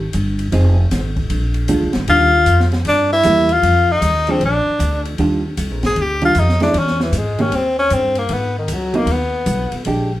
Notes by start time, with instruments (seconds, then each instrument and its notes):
Already playing: upright bass G#1
0.13 upright bass G1, hi-hat pedal, ride
0.39 ride
0.52 upright bass F1, hollow-body jazz guitar F3 C4 D#4 G#4, ride
0.91 upright bass G#1, snare, hi-hat pedal, ride
1.17 kick, ride
1.30 upright bass A#1, ride
1.54 ride
1.68 upright bass D2, hollow-body jazz guitar G#3 D4 F4, hi-hat pedal, ride
1.82 upright bass A#1
1.93 upright bass G#1, snare, ride
2.08 upright bass D#2, hollow-body jazz guitar D#3 G3 D4 F4, tenor saxophone F4, ride
2.46 upright bass F2, hi-hat pedal, ride
2.60 snare
2.72 snare, ride
2.85 upright bass G2, tenor saxophone D4, ride
3.13 tenor saxophone E4
3.23 upright bass E2, hollow-body jazz guitar G3 A#3 E4, hi-hat pedal, ride
3.49 tenor saxophone F4, ride
3.63 upright bass F2, ride
3.92 tenor saxophone D#4
4.01 upright bass D#2, hi-hat pedal, ride
4.27 hollow-body jazz guitar F3 G#3 D4, ride
4.31 tenor saxophone C4
4.40 upright bass A#1, ride
4.45 tenor saxophone D4
4.66 muted upright bass stroke
4.79 upright bass D2, hi-hat pedal, ride
5.05 ride
5.18 upright bass D#2, hollow-body jazz guitar D#3 G3 D4 F4, ride
5.57 upright bass C2, hi-hat pedal, ride
5.71 upright bass A#1
5.83 upright bass G1, tenor saxophone G#4, snare, ride
5.96 upright bass D2, ride
6.01 tenor saxophone G4
6.21 hollow-body jazz guitar D#3 G3 D4 F4, tenor saxophone F4, ride
6.35 upright bass F2, hi-hat pedal, ride
6.39 tenor saxophone D#4
6.49 snare
6.60 hollow-body jazz guitar G#3 C#4 E4, tenor saxophone D4, snare, ride
6.74 upright bass E2, ride
6.79 tenor saxophone C#4
6.87 snare
7.00 tenor saxophone E3, snare
7.12 upright bass G#2, hi-hat pedal, ride
7.18 tenor saxophone G#3
7.39 hollow-body jazz guitar D#3 A#3 C#4 G4, tenor saxophone C#4, ride
7.51 upright bass D#2, tenor saxophone C4, ride
7.79 tenor saxophone C#4
7.90 upright bass G2, tenor saxophone C4, hi-hat pedal, ride
8.15 tenor saxophone A#3, ride
8.29 upright bass G#2, ride
8.33 tenor saxophone B3
8.58 tenor saxophone D#3
8.68 upright bass C#2, hi-hat pedal, ride
8.73 tenor saxophone F#3
8.94 hollow-body jazz guitar F#3 B3 D#4, tenor saxophone A#3, ride
9.06 upright bass D#2, ride
9.11 tenor saxophone B3
9.46 upright bass B1, hi-hat pedal, ride
9.72 muted upright bass stroke, ride
9.85 upright bass A#1, hollow-body jazz guitar G#3 D4 G4, ride